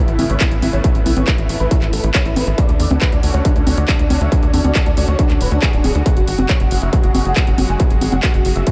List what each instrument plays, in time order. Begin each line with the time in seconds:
Already playing: analog synth pad C#3 A3 B3 E4
0.08 analog synth bass A1, supersaw synth E4, closed hi-hat
0.18 analog synth bass A1, supersaw synth E4, open hi-hat, high conga
0.30 analog synth bass A1, supersaw synth C#5, closed hi-hat
0.40 supersaw synth E4, kick, clap, closed hi-hat
0.51 analog synth bass A1, supersaw synth E4, closed hi-hat
0.62 analog synth bass A1, supersaw synth E4, open hi-hat, high conga
0.73 analog synth bass A1, supersaw synth C#5, closed hi-hat
0.84 supersaw synth E4, kick, closed hi-hat
0.95 analog synth bass A1, supersaw synth E4, closed hi-hat
1.06 analog synth bass B1, supersaw synth E4, open hi-hat, high conga
1.17 analog synth bass A1, supersaw synth C#5, closed hi-hat, high conga
1.27 supersaw synth E4, kick, clap, closed hi-hat
1.38 analog synth bass A1, supersaw synth E4, closed hi-hat
1.49 analog synth bass A1, supersaw synth E4, open hi-hat
1.60 analog synth bass A1, supersaw synth B4, closed hi-hat
1.71 supersaw synth E4, kick, closed hi-hat
1.82 analog synth bass A1, supersaw synth E4, clap, closed hi-hat
1.93 analog synth bass A1, supersaw synth A4, open hi-hat
2.04 analog synth bass A1, supersaw synth E4, closed hi-hat
2.15 supersaw synth C#5, kick, clap, closed hi-hat
2.25 analog synth bass A1, supersaw synth E4, closed hi-hat
2.36 analog synth bass A1, supersaw synth B4, open hi-hat, high conga
2.47 analog synth bass A1, supersaw synth E4, closed hi-hat
2.58 analog synth pad D3 C#4 F#4, supersaw synth D5, kick, closed hi-hat
2.69 analog synth bass D2, supersaw synth D4, closed hi-hat
2.80 analog synth bass E2, supersaw synth D5, open hi-hat
2.91 analog synth bass D2, supersaw synth D4, closed hi-hat, high conga
3.01 supersaw synth B4, kick, clap, closed hi-hat
3.12 analog synth bass D2, supersaw synth D4, closed hi-hat
3.23 analog synth bass D2, supersaw synth D4, open hi-hat
3.34 analog synth bass D2, supersaw synth C#5, closed hi-hat
3.45 supersaw synth D4, kick, closed hi-hat
3.56 analog synth bass D2, supersaw synth D4, closed hi-hat
3.67 analog synth bass D2, supersaw synth D4, open hi-hat, high conga
3.77 analog synth bass D2, supersaw synth D5, closed hi-hat
3.88 supersaw synth D4, kick, clap, closed hi-hat
3.99 analog synth bass D2, supersaw synth D4, closed hi-hat
4.10 analog synth bass D2, supersaw synth D4, open hi-hat, high conga
4.21 analog synth bass D2, supersaw synth E5, closed hi-hat
4.32 supersaw synth D4, kick, closed hi-hat
4.43 analog synth bass D2, supersaw synth D4, closed hi-hat
4.54 analog synth bass E2, supersaw synth D4, open hi-hat, high conga
4.64 analog synth bass D2, supersaw synth D5, closed hi-hat, high conga
4.75 supersaw synth D4, kick, clap, closed hi-hat
4.86 analog synth bass D2, supersaw synth D4, closed hi-hat
4.97 analog synth bass D2, supersaw synth D4, open hi-hat
5.08 analog synth bass D2, supersaw synth C#5, closed hi-hat
5.19 supersaw synth D4, kick, closed hi-hat
5.30 analog synth bass D2, supersaw synth D4, clap, closed hi-hat
5.41 analog synth bass D1, supersaw synth B4, open hi-hat
5.51 analog synth bass D2, supersaw synth D4, closed hi-hat
5.62 supersaw synth G#4, kick, clap, closed hi-hat
5.73 analog synth bass D1, supersaw synth D4, closed hi-hat
5.84 analog synth bass D1, supersaw synth G#4, open hi-hat, high conga
5.95 analog synth bass D2, supersaw synth D4, closed hi-hat
6.06 analog synth pad C#3 F#3 G#3, supersaw synth F#5, kick, closed hi-hat
6.17 analog synth bass F#1, supersaw synth F#4, closed hi-hat
6.27 analog synth bass G#1, supersaw synth F#5, open hi-hat
6.38 analog synth bass F#1, supersaw synth F#4, closed hi-hat, high conga
6.49 supersaw synth C#5, kick, clap, closed hi-hat
6.60 analog synth bass F#1, supersaw synth F#4, closed hi-hat
6.71 analog synth bass F#1, supersaw synth F#4, open hi-hat
6.82 analog synth bass F#1, supersaw synth E5, closed hi-hat
6.93 supersaw synth F#4, kick, closed hi-hat
7.04 analog synth bass F#1, supersaw synth F#4, closed hi-hat
7.14 analog synth bass F#1, supersaw synth F#4, open hi-hat, high conga
7.25 analog synth bass F#1, supersaw synth F#5, closed hi-hat
7.36 supersaw synth F#4, kick, clap, closed hi-hat
7.47 analog synth bass F#1, supersaw synth F#4, closed hi-hat
7.58 analog synth bass F#1, supersaw synth F#4, open hi-hat, high conga
7.69 analog synth bass F#1, supersaw synth G#5, closed hi-hat
7.80 supersaw synth F#4, kick, closed hi-hat
7.91 analog synth bass F#1, supersaw synth F#4, closed hi-hat
8.01 analog synth bass G#1, supersaw synth F#4, open hi-hat, high conga
8.12 analog synth bass F#1, supersaw synth F#5, closed hi-hat, high conga
8.23 supersaw synth F#4, kick, clap, closed hi-hat
8.34 analog synth bass F#1, supersaw synth F#4, closed hi-hat
8.45 analog synth bass F#1, supersaw synth F#4, open hi-hat
8.56 analog synth bass F#1, supersaw synth E5, closed hi-hat
8.67 supersaw synth F#4, kick, closed hi-hat